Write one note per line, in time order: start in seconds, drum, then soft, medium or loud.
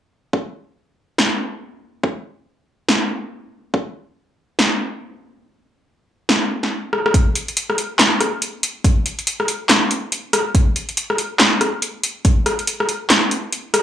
0.33 kick loud
1.18 snare loud
2.03 kick loud
2.89 snare loud
3.74 kick loud
4.59 snare loud
6.29 snare loud
6.63 snare soft
6.93 cross-stick medium
7.06 cross-stick medium
7.14 kick loud
7.14 closed hi-hat medium
7.35 closed hi-hat medium
7.48 closed hi-hat soft
7.57 closed hi-hat medium
7.70 cross-stick medium
7.78 closed hi-hat medium
7.99 snare loud
7.99 clap loud
7.99 closed hi-hat medium
8.21 cross-stick medium
8.21 closed hi-hat medium
8.42 closed hi-hat medium
8.63 closed hi-hat medium
8.84 kick loud
8.84 closed hi-hat medium
9.06 closed hi-hat medium
9.19 closed hi-hat soft
9.27 closed hi-hat medium
9.40 cross-stick medium
9.48 closed hi-hat medium
9.69 snare loud
9.69 clap loud
9.69 closed hi-hat medium
9.91 closed hi-hat medium
10.12 closed hi-hat medium
10.33 cross-stick medium
10.33 closed hi-hat medium
10.55 kick loud
10.55 closed hi-hat medium
10.76 closed hi-hat medium
10.89 closed hi-hat soft
10.97 closed hi-hat medium
11.10 cross-stick medium
11.18 closed hi-hat medium
11.40 snare loud
11.40 clap medium
11.40 closed hi-hat medium
11.61 cross-stick medium
11.61 closed hi-hat medium
11.82 closed hi-hat medium
12.03 closed hi-hat medium
12.25 kick loud
12.25 closed hi-hat medium
12.46 cross-stick medium
12.46 closed hi-hat soft
12.59 closed hi-hat soft
12.67 closed hi-hat medium
12.80 cross-stick medium
12.89 closed hi-hat medium
13.10 snare loud
13.10 clap medium
13.10 closed hi-hat medium
13.31 closed hi-hat medium
13.52 closed hi-hat medium
13.74 cross-stick medium
13.74 closed hi-hat medium